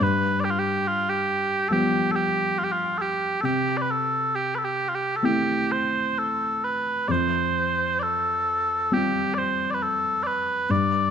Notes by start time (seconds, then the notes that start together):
0.00 G2 B4
0.40 D5
0.44 G4
0.50 F4
0.59 G4
0.88 F4
1.09 G4
1.69 F3 G3 B3 G4 A4
2.11 A4
2.16 G4
2.59 F4
2.64 G4
2.72 F4
2.98 G4 A4
3.41 C3 G4 A4
3.77 D5
3.82 B4
3.91 A4
4.35 G4
4.55 A4 B4
4.65 G4
4.89 F4
4.95 G4
5.16 A4
5.22 A3 C4 E4 G4
5.72 C5
6.19 A4
6.64 B4
7.08 F2 C5 D5
7.99 A4 D5
8.92 G3 C4 F4 G4
9.34 C5 D5
9.70 B4 D5
9.83 A4
10.23 B4 D5
10.69 G2 D5